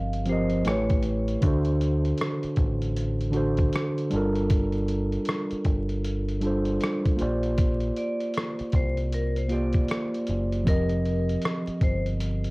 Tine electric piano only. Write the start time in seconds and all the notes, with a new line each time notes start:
Already playing: F3 C4 G4 A#4 D#5
0.26 F3 C4 G4
0.31 A#4 D#5
0.64 A3 E4 G4
0.69 B4 C#5
1.41 D3 D4 F#4
1.46 A4 C5
3.31 D3 D4 F#4
3.35 A4 C5
4.10 G3 D4 F4
4.15 A4 A#4
6.41 G3 D4 F4
6.45 A4 C5
7.16 A#3 F4 G4
7.21 C5 D5
9.48 A#3 F4 G4
9.53 C5 D5
10.63 F3 C4 G4
10.68 A#4 D#5